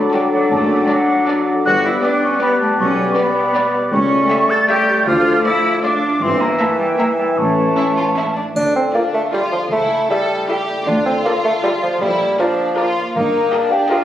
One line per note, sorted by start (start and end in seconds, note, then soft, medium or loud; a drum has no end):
0.00 0.53 D3 medium
0.00 1.67 F#3 medium
0.00 0.69 D4 soft
0.00 1.61 D4 medium
0.00 1.61 F#4 medium
0.00 0.12 A4 soft
0.00 1.62 A4 medium
0.00 1.61 D5 medium
0.00 1.67 F#5 soft
0.12 0.20 G3 medium
0.12 0.41 F#4 medium
0.12 0.41 A4 medium
0.12 1.45 A4 soft
0.12 0.41 D5 medium
0.12 0.19 G5 medium
0.32 0.51 F#3 medium
0.32 1.67 F#4 soft
0.32 0.38 F#5 medium
0.51 0.81 F#1 medium
0.51 1.67 F#2 medium
0.51 0.89 A3 medium
0.51 0.58 A5 medium
0.70 3.94 D4 soft
0.82 0.88 G5 soft
0.89 1.47 F#3 medium
0.89 1.18 D4 soft
0.89 1.17 A4 medium
0.89 1.18 D5 medium
0.89 1.26 D5 soft
0.89 1.47 F#5 medium
1.09 1.67 A5 soft
1.27 1.56 D4 medium
1.27 1.55 A4 medium
1.27 2.03 D5 soft
1.27 1.56 D5 medium
1.46 1.67 A4 soft
1.64 1.95 G1 medium
1.64 1.96 G1 medium
1.64 2.81 G2 medium
1.64 3.92 G3 medium
1.64 3.88 B3 medium
1.64 1.83 F#4 medium
1.64 3.92 G4 medium
1.64 3.93 B4 medium
1.64 3.89 D5 medium
1.64 1.72 F#6 medium
1.84 2.97 B3 soft
1.84 2.03 E4 medium
1.84 2.06 E6 medium
2.03 2.31 B3 medium
2.03 2.22 D4 medium
2.03 2.32 G4 medium
2.03 2.32 D5 medium
2.03 2.40 D5 soft
2.03 2.23 D6 medium
2.22 2.41 C#4 medium
2.22 3.35 G5 soft
2.22 2.41 C#6 medium
2.40 2.69 B3 medium
2.40 2.60 B3 medium
2.40 2.69 G4 medium
2.40 2.69 D5 medium
2.40 3.16 D5 soft
2.40 2.48 B5 medium
2.60 2.68 A3 medium
2.60 3.73 G4 soft
2.60 2.79 A5 medium
2.79 3.09 B1 medium
2.79 3.94 B2 medium
2.79 3.16 C#4 medium
2.79 2.87 C#6 medium
2.98 3.94 B3 soft
3.11 3.17 C#6 soft
3.16 3.45 B3 medium
3.16 3.73 B3 medium
3.16 3.45 G4 medium
3.16 3.45 D5 medium
3.16 3.54 D5 soft
3.16 3.74 B5 medium
3.37 4.49 G5 medium
3.54 3.83 B3 medium
3.54 3.83 G4 medium
3.54 3.83 D5 medium
3.54 3.94 D5 soft
3.74 4.87 G4 soft
3.92 4.22 C#2 medium
3.92 4.23 C#2 medium
3.92 5.09 C#3 medium
3.92 5.09 G3 medium
3.92 6.04 A3 medium
3.92 4.46 C#4 medium
3.92 5.05 G4 medium
3.92 5.93 A4 medium
3.92 5.09 C#5 medium
3.92 4.52 C#6 medium
4.12 5.25 A3 soft
4.30 4.59 A3 medium
4.30 4.59 G4 medium
4.30 4.59 E5 medium
4.30 4.68 E5 medium
4.50 4.57 A4 medium
4.50 5.09 G5 medium
4.50 4.68 A6 medium
4.69 4.97 A3 medium
4.69 4.97 G4 medium
4.69 5.06 G4 medium
4.69 4.97 E5 medium
4.69 5.09 E5 medium
4.69 5.06 G6 medium
4.89 5.09 G4 medium
5.07 5.37 D2 medium
5.07 5.38 D2 medium
5.07 6.23 D3 medium
5.07 5.94 F3 medium
5.07 6.04 F4 medium
5.07 5.44 F4 medium
5.07 5.94 D5 medium
5.07 5.44 F6 medium
5.26 6.23 A3 medium
5.45 5.73 A3 medium
5.45 5.83 E4 medium
5.45 5.74 F4 medium
5.45 5.73 D5 medium
5.45 5.83 D5 soft
5.45 5.83 E6 medium
5.65 6.23 F5 medium
5.84 6.12 A3 medium
5.84 6.21 D4 medium
5.84 6.12 F4 medium
5.84 6.12 D5 medium
5.84 6.23 D5 medium
5.84 6.24 D6 medium
6.02 6.23 F4 soft
6.21 6.52 G1 medium
6.21 7.39 G2 medium
6.21 6.94 E3 medium
6.21 8.32 E3 medium
6.21 6.41 C4 medium
6.21 6.94 E4 medium
6.21 8.32 E4 medium
6.21 7.40 E5 medium
6.21 6.43 C6 medium
6.41 7.39 A#3 soft
6.41 6.60 A#3 medium
6.41 6.59 A#5 medium
6.60 6.79 A3 medium
6.60 6.89 A#3 medium
6.60 6.89 E4 medium
6.60 6.98 E5 soft
6.60 6.89 E5 medium
6.60 6.66 A5 medium
6.79 6.87 G3 medium
6.79 7.39 A#4 soft
6.79 6.98 G5 medium
6.98 7.36 E3 medium
6.98 7.28 A#3 medium
6.98 7.07 A#3 medium
6.98 7.37 E4 medium
6.98 7.28 E4 medium
6.98 7.75 E5 soft
6.98 7.28 E5 medium
6.98 7.04 A#5 medium
7.18 7.26 G3 medium
7.18 8.35 E4 soft
7.18 7.24 G5 medium
7.37 7.68 A1 medium
7.37 7.69 A1 medium
7.37 8.57 A2 soft
7.37 8.34 E3 soft
7.37 8.34 A3 medium
7.37 8.36 C#4 soft
7.37 8.36 C#5 soft
7.37 8.34 A5 medium
7.57 8.57 C#4 soft
7.77 8.07 C#4 soft
7.77 7.85 E4 medium
7.77 8.07 E5 soft
7.97 8.05 F4 medium
7.97 8.57 C#5 soft
8.16 8.46 C#4 soft
8.16 8.25 E4 medium
8.16 8.57 E5 soft
8.16 8.46 E5 soft
8.36 8.44 D4 soft
8.36 8.57 E4 soft
8.56 8.87 D2 medium
8.56 9.73 D3 soft
8.56 8.74 D4 medium
8.56 triangle soft
8.76 9.51 A3 soft
8.76 8.84 C4 medium
8.94 9.03 A#3 medium
8.94 9.31 D4 soft
8.94 9.23 F4 soft
8.94 9.32 F4 soft
8.94 9.23 D5 soft
9.14 9.23 A3 medium
9.14 9.73 D5 soft
9.33 9.42 G3 medium
9.33 9.62 F4 soft
9.33 9.73 F4 soft
9.33 9.71 F4 soft
9.33 9.62 D5 soft
9.52 9.61 F3 soft
9.52 9.90 A3 soft
9.71 10.02 C#2 medium
9.71 10.03 C#2 medium
9.71 10.88 C#3 soft
9.71 10.09 A3 medium
9.71 10.10 E4 medium
9.91 10.67 A3 soft
10.10 10.67 G3 medium
10.10 10.47 E4 soft
10.10 10.39 E4 soft
10.10 10.48 A4 medium
10.10 10.39 A4 soft
10.10 10.39 E5 soft
10.30 10.89 E5 soft
10.48 10.77 E4 soft
10.48 10.89 E4 soft
10.48 10.86 G4 medium
10.48 10.77 A4 soft
10.48 10.78 E5 soft
10.68 11.05 A3 soft
10.87 11.17 D2 medium
10.87 12.03 D3 soft
10.87 11.05 D4 medium
10.87 12.02 F4 medium
11.06 11.82 A3 soft
11.06 11.15 C4 medium
11.25 11.34 A#3 medium
11.25 11.63 F4 soft
11.25 11.54 F4 soft
11.25 11.54 A4 soft
11.25 11.54 D5 medium
11.44 11.53 A3 medium
11.44 12.57 D5 soft
11.63 11.72 G3 medium
11.63 11.92 F4 soft
11.63 12.39 F4 soft
11.63 11.92 A4 soft
11.63 11.92 D5 soft
11.83 12.01 F3 medium
11.83 12.03 A3 soft
12.01 12.31 A#1 medium
12.01 12.31 A#2 medium
12.01 13.17 A#2 soft
12.01 12.38 G3 medium
12.01 12.39 E4 medium
12.21 12.95 A#3 soft
12.39 12.95 F3 medium
12.39 12.76 D4 medium
12.39 12.67 F4 soft
12.39 12.76 F4 soft
12.39 12.67 A#4 soft
12.39 12.67 D5 medium
12.58 13.17 D5 soft
12.77 13.14 F4 medium
12.77 13.05 F4 medium
12.77 13.17 F4 soft
12.77 13.05 A#4 medium
12.77 13.05 D5 soft
12.96 13.33 A#3 soft
13.15 13.45 G1 medium
13.15 13.45 G2 medium
13.15 14.04 G2 medium
13.15 13.74 A#3 medium
13.15 13.52 D#4 medium
13.34 14.04 A#3 soft
13.52 14.04 D4 medium
13.52 13.80 G4 soft
13.52 13.89 G4 soft
13.52 13.80 A#4 soft
13.52 13.80 D#5 medium
13.71 13.90 G4 medium
13.71 14.04 D#5 soft
13.90 14.04 F4 medium
13.90 14.04 G4 medium
13.90 14.04 A#4 medium
13.90 14.04 D#5 medium